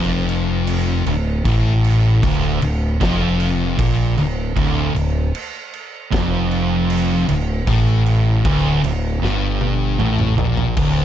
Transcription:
Already playing: fingered electric bass F1, distorted electric guitar F2
0.29 crash
0.67 crash
1.06 fingered electric bass D1, distorted electric guitar D2, crash
1.45 fingered electric bass A1, distorted electric guitar A2, kick, crash
1.84 crash
2.23 fingered electric bass D1, distorted electric guitar D2, kick, crash
2.62 fingered electric bass D1, distorted electric guitar D2, crash
3.01 fingered electric bass F1, distorted electric guitar F2, kick, snare, crash
3.40 crash
3.79 fingered electric bass A#1, distorted electric guitar A#2, kick, crash
4.17 fingered electric bass D1, distorted electric guitar D2, crash
4.57 fingered electric bass D1, distorted electric guitar D2, kick, crash
4.94 fingered electric bass D1, distorted electric guitar D2, crash
5.35 crash
5.73 crash
6.12 fingered electric bass F1, distorted electric guitar F2, kick, snare, crash
6.51 crash
6.90 crash
7.29 fingered electric bass D1, distorted electric guitar D2, crash
7.67 fingered electric bass A1, distorted electric guitar A2, kick, crash
8.06 crash
8.45 fingered electric bass D1, distorted electric guitar D2, kick, crash
8.83 fingered electric bass D1, distorted electric guitar D2, crash
9.23 fingered electric bass G1, distorted electric guitar G2, snare
9.61 high tom
10.00 fingered electric bass A1, distorted electric guitar A2, mid tom
10.19 mid tom
10.38 fingered electric bass A#1, distorted electric guitar A#2, floor tom
10.57 floor tom
10.77 fingered electric bass D1, distorted electric guitar D2, kick, crash

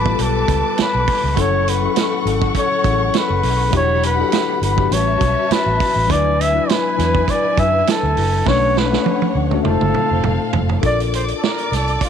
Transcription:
Already playing: fingered electric bass A1, tine electric piano G3 B3 F4 A4 B4, flugelhorn B4, string section B4 A5 D6
0.04 tine electric piano G3 B3 F4, kick
0.09 tine electric piano G4
0.15 tine electric piano A4, closed hi-hat
0.19 fingered electric bass B1, flugelhorn A4
0.48 fingered electric bass C#2, kick, closed hi-hat
0.78 muted fingered electric bass stroke, snare, closed hi-hat
0.82 flugelhorn B4
0.95 fingered electric bass B1
1.08 kick, open hi-hat
1.24 fingered electric bass C#2
1.36 fingered electric bass F#1, tine electric piano F#3 C#4 E4 A4, string section A4 F#5 C#6, kick, closed hi-hat
1.40 flugelhorn C#5
1.68 flugelhorn B4, closed hi-hat
1.81 tine electric piano F#3 C#4 E4
1.85 tine electric piano A4
1.96 snare, closed hi-hat
2.24 fingered electric bass G#1, tine electric piano F#3 C#4 E4 A4, closed hi-hat
2.42 kick
2.55 kick, closed hi-hat
2.59 flugelhorn C#5
2.83 fingered electric bass A1, tine electric piano F#3 C#4 E4 G#4, kick, closed hi-hat
2.93 tine electric piano A4
3.14 snare, closed hi-hat
3.18 flugelhorn B4
3.30 fingered electric bass F#1
3.43 fingered electric bass B1, open hi-hat
3.71 fingered electric bass E1, tine electric piano F#3 D4 E4, string section G4 F#5 B5, kick, closed hi-hat
3.75 tine electric piano G4, flugelhorn C#5
4.03 flugelhorn B4, closed hi-hat
4.17 tine electric piano D4 E4 F#4 A4
4.32 snare, closed hi-hat
4.62 fingered electric bass G1, flugelhorn B4, closed hi-hat
4.76 tine electric piano F#3 D4 E4 G4, kick
4.89 fingered electric bass A1, tine electric piano G3 C#4 F#4, string section F#4 E5 A5, closed hi-hat
4.93 tine electric piano B4, flugelhorn C#5
5.21 fingered electric bass B1, kick, closed hi-hat
5.51 flugelhorn B4, muted fingered electric bass stroke, snare, closed hi-hat
5.66 fingered electric bass A1
5.80 kick, open hi-hat
5.96 fingered electric bass A1
6.07 fingered electric bass D2, tine electric piano F#3 D4 E4 B4, string section E4 B4 G#5, kick, closed hi-hat
6.11 flugelhorn D5
6.41 flugelhorn E5, closed hi-hat
6.53 tine electric piano F#3 D4 E4 B4
6.69 flugelhorn B4, snare, closed hi-hat
6.96 fingered electric bass E2, tine electric piano F#3 D4 E4 B4, snare, closed hi-hat
7.15 kick
7.28 flugelhorn D5, kick, closed hi-hat
7.56 fingered electric bass F#2, tine electric piano F#3 D4 E4 B4, flugelhorn E5, kick, closed hi-hat
7.87 flugelhorn A4, snare, closed hi-hat
8.03 fingered electric bass D2
8.17 fingered electric bass F#1, open hi-hat
8.45 fingered electric bass B1, tine electric piano A3 C#4 D4 B4, string section D4 C#5 F#5, flugelhorn C#5, kick, snare
8.77 flugelhorn B4, snare
8.91 tine electric piano A3 C#4 D4 B4, snare
9.06 high tom
9.22 high tom
9.35 fingered electric bass D2
9.50 tine electric piano A3 C#4 D4 F#4, mid tom
9.63 fingered electric bass F1, tine electric piano A3 D#4 F4, string section C4 A4 F5, mid tom
9.67 flugelhorn A4, tine electric piano C5
9.81 fingered electric bass G1, mid tom
9.94 mid tom
10.11 fingered electric bass F1
10.24 fingered electric bass F1, mid tom
10.53 fingered electric bass F1, floor tom
10.69 floor tom
10.82 fingered electric bass A#1, tine electric piano D4 F4 A4 A#4, string section D5 D6, kick, closed hi-hat
10.86 flugelhorn D5
11.00 closed hi-hat
11.14 flugelhorn C5, closed hi-hat
11.28 closed hi-hat
11.38 flugelhorn A4
11.44 flugelhorn A#4, snare
11.59 closed hi-hat
11.72 fingered electric bass C2, flugelhorn A4, snare, closed hi-hat
11.88 closed hi-hat
12.01 flugelhorn F4, kick, closed hi-hat

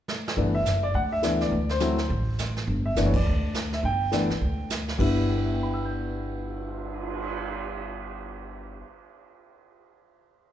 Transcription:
0.08 snare
0.28 snare
0.37 upright bass G1, upright piano E3 A3 B3 D4, brush sweep, kick
0.55 upright piano E5
0.65 upright bass F#1, snare, hi-hat pedal
0.83 upright piano D5
0.94 upright bass D2, upright piano F#5, brush sweep, kick
1.12 upright piano E5
1.23 upright piano E3 A3 B3 D4, snare, hi-hat pedal
1.41 upright piano D5, snare
1.51 upright bass D2, brush sweep, kick
1.69 upright piano C5, snare
1.80 upright piano F#3 A3 C4 E4, snare, hi-hat pedal
1.98 snare
2.10 upright bass A1, brush sweep, kick
2.38 snare, hi-hat pedal
2.56 snare
2.67 upright bass G1, brush sweep, kick
2.86 upright piano E5
2.96 upright bass F#1, upright piano E3 A3 B3 D4, snare, hi-hat pedal
3.06 upright piano C#5
3.13 upright piano D5, kick, ride
3.25 upright bass D2, brush sweep
3.54 snare, hi-hat pedal
3.72 upright piano E5, snare
3.83 upright bass G1, upright piano G5, brush sweep, kick
4.12 upright piano E3 A3 B3 D4, snare, hi-hat pedal
4.29 muted upright bass stroke, snare
4.41 upright bass D2, brush sweep, kick
4.70 snare, hi-hat pedal
4.88 snare
4.98 upright bass G1, upright piano G2 G3 B3 E4, kick, crash
5.16 cymbal swell
5.29 upright piano G4
5.36 upright piano B4
5.44 upright piano E5
5.53 upright piano G5
5.63 upright piano B5
5.74 upright piano E6
5.85 upright piano G6

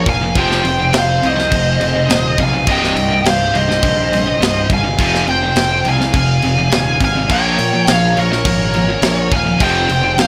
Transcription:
Already playing: string section F3 C#4 A#4
0.06 picked electric bass F1, distorted electric guitar A#2 F3, lead electric guitar F5 G#5, kick, crash
0.21 distorted electric guitar A#2 F3
0.35 picked electric bass F1, distorted electric guitar F2 C3 F3, string section C4 G#4, lead electric guitar G5, kick, crash
0.40 lead electric guitar C5
0.51 snare
0.65 picked electric bass F1, distorted electric guitar F2 C3, crash
0.80 distorted electric guitar F2 C3
0.93 picked electric bass F1, distorted electric guitar F2 C3, snare, crash
0.98 lead electric guitar C5 F5
1.23 picked electric bass C2, distorted electric guitar F2 C3, lead electric guitar C5 D#5, crash
1.36 distorted electric guitar F2 C3, snare
1.52 picked electric bass F1, distorted electric guitar F2 C3, kick, crash
1.80 picked electric bass F1, distorted electric guitar F2 C3, crash
1.94 distorted electric guitar F2 C3
2.08 picked electric bass D#1, distorted electric guitar F2 C3, snare, crash
2.38 picked electric bass B1, distorted electric guitar F2 C3, lead electric guitar F5, kick, crash
2.43 lead electric guitar G#5
2.54 distorted electric guitar F2 C3
2.66 picked electric bass C1, distorted electric guitar C2 G2 C3, string section D#3 G4, lead electric guitar D#5, kick, crash
2.71 lead electric guitar G5
2.84 snare
2.95 picked electric bass C2, distorted electric guitar C2 G2, crash
3.10 distorted electric guitar C2 G2
3.24 picked electric bass C1, distorted electric guitar C2 G2, lead electric guitar F5, snare, crash
3.30 lead electric guitar C5
3.54 picked electric bass C1, distorted electric guitar C2 G2, lead electric guitar D#5, crash
3.58 lead electric guitar C5
3.69 distorted electric guitar C2 G2, snare
3.82 picked electric bass A#1, distorted electric guitar C2 G2, kick, crash
4.12 distorted electric guitar C2 G2, crash
4.25 distorted electric guitar C2 G2
4.40 picked electric bass C1, distorted electric guitar C2 G2, snare, crash
4.69 picked electric bass G1, distorted electric guitar C2 G2, lead electric guitar F5, kick, crash
4.74 lead electric guitar G#5
4.83 distorted electric guitar C2 G2
4.98 picked electric bass F1, distorted electric guitar F2 C3 F3, string section F3 C4 G#4, kick, crash
5.15 snare
5.26 picked electric bass F1, distorted electric guitar F2 C3, lead electric guitar G5, crash
5.30 lead electric guitar C5
5.42 distorted electric guitar F2 C3
5.56 picked electric bass F1, distorted electric guitar F2 C3, snare, crash
5.84 picked electric bass C2, distorted electric guitar F2 C3, crash
5.89 lead electric guitar F5 G#5
5.98 distorted electric guitar F2 C3, snare
6.12 picked electric bass F1, distorted electric guitar F2 C3, lead electric guitar G#5, kick, crash
6.17 lead electric guitar F5
6.42 picked electric bass F1, distorted electric guitar F2 C3, crash
6.58 distorted electric guitar F2 C3
6.70 picked electric bass D#1, distorted electric guitar F2 C3, snare, crash
7.00 picked electric bass G#1, distorted electric guitar F2 C3, kick, crash
7.04 lead electric guitar F5 G#5
7.14 distorted electric guitar F2 C3
7.29 picked electric bass A#1, distorted electric guitar A#2 F3 A#3, string section C#4 A#4, lead electric guitar G5, kick, crash
7.33 lead electric guitar C#5
7.57 distorted electric guitar A#2 F3, picked electric bass A#2, crash
7.73 distorted electric guitar A#2 F3
7.87 picked electric bass A#1, distorted electric guitar A#2 F3, lead electric guitar C#5 F5, snare, crash
8.17 picked electric bass A#1, distorted electric guitar A#2 F3, lead electric guitar A#4 C#5, crash
8.31 distorted electric guitar A#2 F3, snare
8.44 picked electric bass G#1, distorted electric guitar A#2 F3, kick, crash
8.73 distorted electric guitar A#2 F3, crash
8.88 distorted electric guitar A#2 F3
9.02 picked electric bass A#1, distorted electric guitar A#2 F3, snare, crash
9.31 picked electric bass D#1, distorted electric guitar A#2 F3, lead electric guitar G#5, kick, crash
9.36 lead electric guitar F5
9.45 distorted electric guitar A#2 F3
9.58 picked electric bass F1, distorted electric guitar F2 C3 F3, lead electric guitar G5, kick, crash
9.62 string section C4 G#4, lead electric guitar C5
9.88 picked electric bass F1, distorted electric guitar F2 C3, crash
10.02 distorted electric guitar F2 C3
10.17 picked electric bass F1, distorted electric guitar F2 C3, lead electric guitar F5, snare, crash
10.22 lead electric guitar C5

